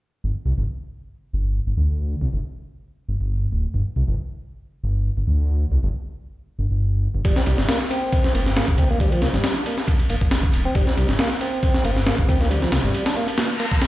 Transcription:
0.24 0.32 G1 medium
0.46 0.53 C2 medium
0.58 0.64 G1 loud
1.33 1.60 G1 medium
1.67 1.74 G1 medium
1.77 2.15 D2 medium
2.21 2.29 C2 medium
2.33 2.40 G1 loud
3.09 3.16 G1 medium
3.21 3.47 G1 medium
3.52 3.67 D1 medium
3.74 3.82 G1 medium
3.96 4.04 C2 medium
4.08 4.14 G1 loud
4.84 5.11 G1 medium
5.17 5.24 G1 medium
5.27 5.65 D2 medium
5.71 5.79 C2 medium
5.83 5.90 G1 loud
6.59 6.66 G1 medium
6.71 7.08 G1 medium
7.15 7.21 G1 loud
7.25 7.32 G1 medium
7.25 7.35 G3 medium
7.25 kick medium
7.25 ride medium
7.36 7.42 C4 medium
7.36 snare medium
7.46 7.54 C2 medium
7.46 7.57 G3 medium
7.46 ride medium
7.58 7.65 G1 loud
7.58 snare medium
7.69 7.79 A#3 medium
7.69 snare loud
7.69 ride medium
7.81 snare soft
7.90 8.33 C4 medium
7.90 ride medium
8.12 kick loud
8.12 ride medium
8.24 snare soft
8.35 8.61 G1 medium
8.35 8.40 A#3 medium
8.35 ride medium
8.46 snare soft
8.57 8.67 A#3 medium
8.57 snare loud
8.57 ride medium
8.68 8.75 G1 medium
8.68 kick medium
8.78 9.16 D2 medium
8.78 8.89 C4 medium
8.78 kick medium
8.78 ride medium
8.90 8.99 A#3 medium
9.00 9.11 G3 medium
9.00 kick loud
9.00 ride medium
9.12 9.22 F3 medium
9.12 ride soft
9.22 9.29 C2 medium
9.22 9.28 A#3 medium
9.22 snare medium
9.22 ride medium
9.34 9.40 G1 loud
9.34 9.55 G3 medium
9.34 snare soft
9.44 snare loud
9.44 ride medium
9.56 9.65 D4 medium
9.56 ride soft
9.66 9.77 A#3 medium
9.66 ride medium
9.78 snare soft
9.88 kick loud
9.88 ride medium
9.99 ride soft
10.10 10.17 G1 medium
10.10 10.16 A#3 medium
10.10 ride medium
10.21 10.47 G1 medium
10.21 kick medium
10.31 snare loud
10.31 ride medium
10.43 kick medium
10.53 10.68 D1 medium
10.53 ride medium
10.65 10.75 C4 loud
10.75 10.83 G1 medium
10.75 10.86 G3 medium
10.75 kick loud
10.75 ride medium
10.87 10.92 C4 medium
10.87 snare medium
10.97 11.05 C2 medium
10.97 11.08 G3 medium
10.97 ride medium
11.09 11.15 G1 loud
11.09 snare medium
11.19 11.29 A#3 medium
11.19 snare loud
11.19 ride medium
11.31 snare soft
11.41 11.84 C4 medium
11.41 ride medium
11.63 kick loud
11.63 ride medium
11.74 snare soft
11.84 12.11 G1 medium
11.84 11.91 A#3 medium
11.84 ride medium
11.97 snare soft
12.06 12.17 A#3 medium
12.06 snare loud
12.06 ride medium
12.18 12.25 G1 medium
12.18 kick medium
12.28 12.66 D2 loud
12.28 12.39 C4 medium
12.28 kick medium
12.28 ride medium
12.40 12.49 A#3 medium
12.40 snare soft
12.50 12.60 G3 medium
12.50 ride medium
12.62 12.72 F3 medium
12.62 snare soft
12.72 12.80 C2 medium
12.72 12.78 A#3 medium
12.72 snare loud
12.72 ride medium
12.84 12.90 G1 loud
12.84 13.05 G3 medium
12.84 snare soft
12.94 ride medium
13.06 13.16 D4 medium
13.06 snare loud
13.06 ride medium
13.17 13.27 A#3 medium
13.17 snare soft
13.28 ride medium
13.38 snare loud
13.38 ride medium
13.38 reverse cymbal medium
13.49 ride soft
13.60 13.66 A#3 medium
13.60 ride medium
13.72 kick medium
13.82 snare loud
13.82 ride medium

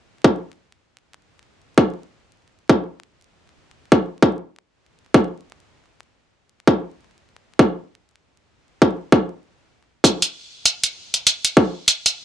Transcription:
0.24 kick loud
1.78 kick medium
2.70 kick loud
3.92 kick medium
4.23 kick loud
5.14 kick loud
6.67 kick loud
7.59 kick loud
8.82 kick loud
9.12 kick loud
10.04 kick loud
10.04 closed hi-hat medium
10.22 closed hi-hat soft
10.65 closed hi-hat medium
10.83 closed hi-hat soft
11.14 closed hi-hat soft
11.27 closed hi-hat medium
11.45 closed hi-hat soft
11.57 kick loud
11.88 closed hi-hat medium
12.06 closed hi-hat soft

